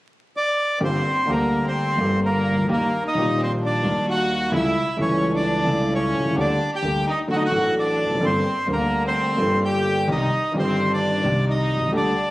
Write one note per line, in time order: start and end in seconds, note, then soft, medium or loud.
0.37 0.79 D5 medium
0.80 1.01 G1 medium
0.80 1.01 G2 medium
0.80 1.00 D3 medium
0.80 1.00 G3 medium
0.80 1.01 A#3 soft
0.80 1.25 C4 soft
0.80 1.00 G4 medium
0.80 1.31 C5 medium
1.26 1.95 D2 medium
1.26 1.94 D3 medium
1.26 1.94 G3 soft
1.26 1.95 A#3 medium
1.26 1.61 A#3 soft
1.26 1.96 G4 medium
1.31 1.66 A#4 medium
1.65 2.19 C4 medium
1.65 2.20 C5 medium
1.97 2.65 G1 medium
1.97 2.51 G1 medium
1.97 2.65 G2 medium
1.97 2.64 D3 medium
1.97 2.65 G3 soft
1.97 2.66 A#3 soft
1.97 2.66 G4 medium
2.24 2.66 A#3 medium
2.24 2.67 A#4 medium
2.51 2.56 C2 soft
2.51 2.57 C2 soft
2.57 2.62 C#2 soft
2.57 2.63 C#2 soft
2.62 2.68 D2 medium
2.62 2.69 D2 medium
2.68 2.88 D#2 medium
2.68 2.88 D#3 medium
2.68 2.88 G3 medium
2.68 2.88 A#3 medium
2.68 3.01 A#3 medium
2.68 2.88 G4 medium
2.73 3.03 A#4 medium
3.04 3.36 D#4 medium
3.04 3.41 D#5 medium
3.14 3.81 A#1 medium
3.14 3.81 A#2 medium
3.14 3.80 D#3 medium
3.14 3.81 G3 medium
3.14 3.81 A#3 medium
3.18 3.82 G4 medium
3.39 3.49 C4 medium
3.43 3.52 C5 medium
3.61 4.04 D4 medium
3.66 4.06 D5 medium
3.82 4.49 D#2 medium
3.82 4.50 D#2 medium
3.82 4.49 D#3 medium
3.82 4.49 G3 medium
3.82 4.49 A#3 medium
3.82 4.50 A#4 medium
4.08 4.50 F#4 medium
4.08 4.51 F#5 medium
4.51 4.71 C#2 medium
4.51 4.72 C#2 medium
4.51 4.72 C#3 medium
4.51 4.71 G3 medium
4.51 4.71 A3 medium
4.51 4.72 E4 medium
4.51 4.95 E4 medium
4.56 4.97 E5 medium
4.96 5.63 C#2 medium
4.96 5.64 C#2 medium
4.96 5.63 E3 medium
4.96 5.63 G3 medium
4.96 5.63 A3 medium
4.96 5.64 E4 medium
5.01 5.31 C#4 medium
5.01 5.32 C#5 medium
5.35 5.87 D4 medium
5.35 5.94 D5 medium
5.64 6.29 C#2 medium
5.64 6.18 C#2 medium
5.64 6.32 C#3 medium
5.64 6.32 G3 medium
5.64 6.33 A3 medium
5.68 6.33 E4 medium
5.92 6.34 C#4 medium
5.92 6.36 C#5 medium
6.18 6.24 B1 soft
6.23 6.30 C2 soft
6.30 6.36 C#2 soft
6.30 6.35 C#2 medium
6.35 6.55 D2 medium
6.35 6.56 D2 medium
6.35 6.56 D3 medium
6.35 6.55 G3 medium
6.35 6.56 A#3 medium
6.35 6.70 D4 medium
6.35 6.56 G4 medium
6.40 6.71 D5 medium
6.73 7.04 G4 medium
6.73 7.05 G5 medium
6.82 7.01 D2 medium
6.82 7.02 D2 medium
6.82 7.02 D3 medium
6.82 7.02 G3 medium
6.82 7.02 A#3 medium
6.82 7.02 G4 medium
7.07 7.17 D#4 medium
7.07 7.19 D#5 medium
7.27 7.48 D2 medium
7.27 7.48 D3 medium
7.27 7.48 F#3 soft
7.27 7.48 A3 soft
7.27 7.48 D4 soft
7.27 7.36 F#4 medium
7.27 7.48 A4 medium
7.33 7.43 D#4 medium
7.33 7.37 F#5 medium
7.37 7.43 D#5 medium
7.45 7.74 F#4 medium
7.45 7.75 F#5 medium
7.49 8.19 A1 medium
7.49 8.04 A1 medium
7.49 8.18 A2 medium
7.49 8.17 F#3 soft
7.49 8.18 A3 soft
7.49 8.19 D4 soft
7.54 8.19 A4 medium
7.78 8.21 D4 medium
7.78 8.25 D5 medium
8.04 8.10 E1 soft
8.04 8.10 E2 soft
8.09 8.16 F1 soft
8.09 8.16 F2 soft
8.15 8.22 F#1 soft
8.15 8.21 F#2 soft
8.20 8.41 G1 medium
8.20 8.42 G1 medium
8.20 8.41 G2 medium
8.20 8.41 G3 medium
8.20 8.41 A#3 medium
8.20 8.67 C4 medium
8.20 8.41 D4 medium
8.20 8.41 A4 medium
8.25 8.67 C5 medium
8.66 9.35 D2 medium
8.66 9.35 D3 medium
8.66 9.34 G3 medium
8.66 9.35 A#3 soft
8.66 9.35 D4 medium
8.66 9.36 A#4 medium
8.72 9.03 A#3 medium
8.72 9.03 A#4 medium
9.05 9.59 C4 medium
9.05 9.60 C5 medium
9.36 10.05 G1 medium
9.36 10.05 G2 medium
9.36 10.03 G3 medium
9.36 10.04 A#3 soft
9.36 10.05 D4 soft
9.40 10.06 A4 medium
9.64 10.06 G4 medium
9.64 10.07 G5 medium
10.07 10.27 C2 medium
10.07 10.28 C2 medium
10.07 10.28 C3 medium
10.07 10.27 D#3 medium
10.07 10.28 G3 medium
10.07 10.28 C4 medium
10.07 10.53 D#4 medium
10.07 10.28 G4 medium
10.11 10.53 D#5 medium
10.52 11.20 G1 medium
10.52 11.20 G2 medium
10.52 11.19 D#3 medium
10.52 11.19 G3 medium
10.52 11.20 C4 medium
10.56 10.89 C4 medium
10.56 11.21 G4 medium
10.56 10.92 C5 medium
10.93 11.45 D4 medium
10.93 11.45 D5 medium
11.22 11.79 C2 medium
11.22 11.76 C2 medium
11.22 11.89 C3 medium
11.22 11.88 D#3 medium
11.22 11.89 G3 medium
11.22 11.89 C4 medium
11.22 11.90 G4 medium
11.49 11.90 D#4 medium
11.49 11.91 D#5 medium
11.76 11.81 B1 soft
11.81 11.87 C2 soft
11.81 11.86 C2 soft
11.86 11.92 C#2 medium
11.86 11.93 C#2 medium
11.92 12.12 D2 medium
11.92 12.12 D3 medium
11.92 12.12 G3 medium
11.92 12.12 A3 medium
11.92 12.31 D4 medium
11.92 12.12 G4 medium
11.97 12.31 D5 medium